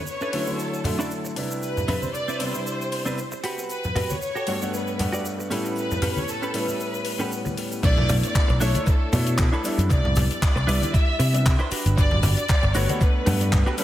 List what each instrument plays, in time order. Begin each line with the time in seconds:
0.07 violin section C#5, cabasa, shaker
0.21 clean electric guitar C#4 D4 E4 A4 B4, shaker
0.33 grand piano D3 F#3 A3 C#4 E4, open hi-hat, cabasa
0.47 grand piano D3 F#3 A3 E4 C#5, cabasa, shaker
0.59 violin section A4, cabasa, shaker
0.74 shaker
0.84 grand piano D3 F#3 A3 E4, open hi-hat, low conga, cabasa
0.99 clean electric guitar C#4 D4 E4 A4 D5, cabasa, shaker
1.11 cabasa, shaker
1.25 muted clean electric guitar stroke, shaker
1.36 grand piano C3 G3 D4 E4 B4, muted clean electric guitar stroke, open hi-hat, cabasa
1.51 cabasa, shaker
1.63 violin section B4, cabasa, shaker
1.77 low conga, cabasa, shaker
1.88 clean electric guitar C4 D4 E4 B4, open hi-hat, low conga, cabasa
2.02 violin section C5, high conga, cabasa, shaker
2.14 violin section D5, cabasa, shaker
2.28 clean electric guitar C4 D4 E4 B4, shaker
2.39 grand piano C3 G3 B3 D4 E4, violin section C5, open hi-hat, cabasa
2.54 grand piano C3 G3 D4 E4 C5, cabasa, shaker
2.67 cabasa, shaker
2.81 shaker
2.92 open hi-hat, cabasa
3.05 grand piano C3 G3 B3 D4 E4, clean electric guitar C4 D4 E4 B4, cabasa, shaker
3.18 cabasa, shaker
3.32 muted clean electric guitar stroke, shaker
3.44 clean electric guitar F#4 G4 B4, open hi-hat, cabasa
3.59 cabasa, shaker
3.69 violin section B4, cabasa, shaker
3.84 low conga, cabasa, shaker
3.95 clean electric guitar F#4 G4 B4, open hi-hat, low conga, cabasa
4.10 violin section C#5, high conga, cabasa, shaker
4.22 violin section C#5, cabasa, shaker
4.35 clean electric guitar F#4 G4 A4, shaker
4.47 grand piano G2 A3 B3 D4 F#4, open hi-hat, cabasa
4.61 grand piano G2 A3 B3 D4 F#5, cabasa, shaker
4.73 violin section B4, cabasa, shaker
4.87 shaker
4.99 grand piano G2 A3 B3 D4 F#5, open hi-hat, low conga, cabasa
5.13 clean electric guitar F#4 G4 D5, cabasa, shaker
5.25 cabasa, shaker
5.39 muted clean electric guitar stroke, shaker
5.50 grand piano A2 G3 B3 C#4 E4, clean electric guitar C#4 G4 A4 B4, open hi-hat, cabasa
5.66 cabasa, shaker
5.76 violin section B4, cabasa, shaker
5.91 low conga, cabasa, shaker
6.02 clean electric guitar C#4 G4 A4 B4, open hi-hat, low conga, cabasa
6.16 violin section C#5, high conga, cabasa, shaker
6.28 violin section A4, cabasa, shaker
6.42 clean electric guitar C#4 G4 A4 B4, cabasa, shaker
6.53 grand piano A2 G3 B3 C#4 E4, violin section B4, open hi-hat, cabasa
6.68 grand piano A2 G3 B3 C#4 E4, cabasa, shaker
6.80 cabasa, shaker
6.94 shaker
7.05 open hi-hat, cabasa
7.19 grand piano A2 G3 B3 C#4 F#5, clean electric guitar C#4 G4 A4 B4, cabasa, shaker
7.32 cabasa, shaker
7.45 muted clean electric guitar stroke, high conga, shaker
7.57 muted clean electric guitar stroke, open hi-hat, cabasa
7.72 cabasa, shaker
7.83 picked electric bass B1, grand piano A3 B3 D4 E4, violin section D5, kick, closed hi-hat, crash, cabasa, shaker
7.98 picked electric bass B1, low conga
8.09 picked electric bass B1, cross-stick, open hi-hat, low conga, cabasa, shaker
8.23 violin section D5, closed hi-hat, cabasa, shaker
8.35 kick, clap, closed hi-hat, cabasa, shaker
8.48 picked electric bass B1, muted clean electric guitar stroke, cabasa
8.60 picked electric bass B1, grand piano A3 C#4 D4 E4, clean electric guitar D4 E4 A4 E5, violin section C#5, open hi-hat, cabasa, shaker
8.75 grand piano A3 D4 E4 C#5, closed hi-hat, high conga, cabasa, shaker
8.86 violin section A4, kick, closed hi-hat, cabasa, shaker
9.13 picked electric bass B2, grand piano A3 D4 E4 C#5, muted clean electric guitar stroke, open hi-hat, low conga, cabasa, shaker
9.26 muted clean electric guitar stroke, closed hi-hat, cabasa, shaker
9.38 kick, clap, closed hi-hat, cabasa, shaker
9.52 clean electric guitar D4 E4 A4 B4, cabasa
9.64 grand piano G3 B3 D4 E4, open hi-hat, cabasa, shaker
9.78 picked electric bass F#2, closed hi-hat, cabasa, shaker
9.90 picked electric bass C2, violin section D5, kick, closed hi-hat, cabasa, shaker
10.04 picked electric bass C2, low conga
10.16 picked electric bass C2, cross-stick, open hi-hat, low conga, cabasa, shaker
10.30 violin section D5, closed hi-hat, cabasa, shaker
10.42 kick, clap, closed hi-hat, cabasa, shaker
10.56 picked electric bass C2, muted clean electric guitar stroke, cabasa
10.67 picked electric bass C2, grand piano G3 B3 D4 E4, clean electric guitar D4 E4 B4 D5, open hi-hat, cabasa, shaker
10.81 grand piano G3 D4 E4, closed hi-hat, high conga, cabasa, shaker
10.94 violin section E5, kick, closed hi-hat, cabasa, shaker
11.19 picked electric bass C3, muted clean electric guitar stroke, open hi-hat, cabasa, shaker
11.33 grand piano G3 B3 D4 E4, muted clean electric guitar stroke, closed hi-hat, cabasa, shaker
11.46 kick, clap, closed hi-hat, cabasa, shaker
11.59 clean electric guitar D4 E4 B4 C5, cabasa
11.71 clean electric guitar D4 F#4 G4 B4, muted picked electric bass stroke, open hi-hat, cabasa, shaker
11.86 picked electric bass G1, closed hi-hat, cabasa, shaker
11.97 picked electric bass G1, violin section D5, kick, closed hi-hat, cabasa, shaker
12.11 picked electric bass G1, low conga
12.23 picked electric bass G1, cross-stick, open hi-hat, low conga, cabasa, shaker
12.37 violin section D5, closed hi-hat, cabasa, shaker
12.48 kick, clap, closed hi-hat, cabasa, shaker
12.63 picked electric bass G1, muted clean electric guitar stroke, cabasa
12.74 picked electric bass G1, grand piano A3 B3 D4 F#4, clean electric guitar D4 F#4 G4 B4, violin section C#5, open hi-hat, cabasa, shaker
12.89 grand piano A3 B3 D4 F#5, closed hi-hat, high conga, cabasa, shaker
13.00 violin section B4, kick, closed hi-hat, cabasa, shaker
13.26 picked electric bass G2, grand piano A3 B3 D4 F#5, muted clean electric guitar stroke, open hi-hat, low conga, cabasa, shaker
13.41 muted clean electric guitar stroke, closed hi-hat, cabasa, shaker
13.52 kick, clap, closed hi-hat, cabasa, shaker
13.66 clean electric guitar D4 F#4 G4 B4, cabasa
13.77 grand piano G3 B3 C#4 E4, clean electric guitar C#4 G4 A4 B4, open hi-hat, cabasa, shaker